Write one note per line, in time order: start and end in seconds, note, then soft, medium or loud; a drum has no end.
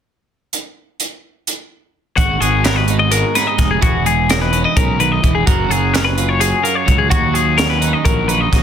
0.53 closed hi-hat medium
1.00 closed hi-hat soft
1.47 closed hi-hat medium
2.17 2.38 G#1 medium
2.17 3.79 G#2 medium
2.17 2.41 F#4 medium
2.17 3.81 F#4 medium
2.17 kick medium
2.17 closed hi-hat medium
2.41 3.23 G#1 medium
2.41 3.10 G#3 medium
2.41 2.64 G#4 medium
2.41 closed hi-hat medium
2.64 4.29 B3 medium
2.64 2.76 A#4 medium
2.64 snare loud
2.64 closed hi-hat medium
2.76 2.99 B4 medium
2.88 3.34 D#4 soft
2.88 closed hi-hat soft
2.99 3.11 D#5 medium
3.11 3.57 G#3 medium
3.11 3.35 A#4 medium
3.11 closed hi-hat medium
3.35 3.79 D#4 medium
3.35 3.47 B4 medium
3.35 snare soft
3.35 closed hi-hat medium
3.47 3.70 D#5 medium
3.58 3.79 F1 medium
3.58 3.79 G#3 medium
3.58 kick medium
3.58 snare soft
3.58 closed hi-hat medium
3.71 3.82 G#4 medium
3.81 4.64 E1 medium
3.81 4.76 E3 medium
3.81 4.06 F#4 medium
3.81 5.44 G#4 medium
3.81 kick loud
3.81 closed hi-hat medium
4.05 5.44 G#3 medium
4.05 4.29 G#4 medium
4.05 closed hi-hat soft
4.29 5.44 D#4 medium
4.29 4.41 A#4 medium
4.29 snare medium
4.29 closed hi-hat medium
4.42 4.65 B4 medium
4.53 4.64 C#4 soft
4.53 closed hi-hat soft
4.64 5.47 E4 soft
4.64 4.76 D#5 medium
4.76 5.17 B1 medium
4.76 5.00 C#3 medium
4.76 5.00 A#4 medium
4.76 kick loud
4.76 closed hi-hat medium
5.00 5.23 D#3 medium
5.00 5.12 B4 medium
5.00 closed hi-hat soft
5.12 5.35 D#5 medium
5.23 5.44 E1 medium
5.23 5.47 E3 medium
5.23 kick medium
5.23 closed hi-hat soft
5.35 5.46 G#4 medium
5.46 5.68 F#1 medium
5.46 7.11 F#2 medium
5.46 5.71 F#4 medium
5.46 7.09 A#4 medium
5.46 kick loud
5.46 closed hi-hat medium
5.69 6.52 F#1 medium
5.69 6.40 F#3 medium
5.69 5.94 G#4 medium
5.69 closed hi-hat soft
5.94 7.08 C#4 soft
5.94 6.05 A#4 medium
5.94 snare loud
5.94 closed hi-hat medium
6.05 6.29 B4 medium
6.18 6.62 F4 soft
6.18 closed hi-hat medium
6.29 6.41 C#5 medium
6.40 6.85 F#3 medium
6.40 6.64 G#4 medium
6.40 closed hi-hat medium
6.63 7.08 F4 soft
6.63 6.75 A#4 medium
6.63 closed hi-hat medium
6.75 6.99 C#5 medium
6.86 7.08 C#2 medium
6.86 7.33 F#3 medium
6.86 kick medium
6.86 closed hi-hat medium
6.98 7.10 G#4 medium
7.09 7.93 D#2 medium
7.09 8.63 D#3 medium
7.09 7.34 F#4 medium
7.09 8.63 F#4 medium
7.09 kick loud
7.09 closed hi-hat medium
7.34 8.04 F#3 medium
7.34 7.58 G#4 medium
7.34 closed hi-hat medium
7.58 8.63 C#4 soft
7.58 7.69 A#4 medium
7.58 snare medium
7.58 closed hi-hat medium
7.70 7.93 B4 medium
7.81 8.28 D#4 medium
7.81 closed hi-hat medium
7.93 8.05 D#5 medium
8.05 8.46 A#1 medium
8.05 8.51 F#3 medium
8.05 8.28 A#4 medium
8.05 kick loud
8.05 closed hi-hat medium
8.28 8.63 D#4 soft
8.28 8.41 B4 medium
8.28 closed hi-hat medium
8.41 8.63 D#5 medium
8.52 8.63 A#1 medium
8.52 8.63 F#3 medium
8.52 kick medium
8.52 snare soft
8.52 closed hi-hat medium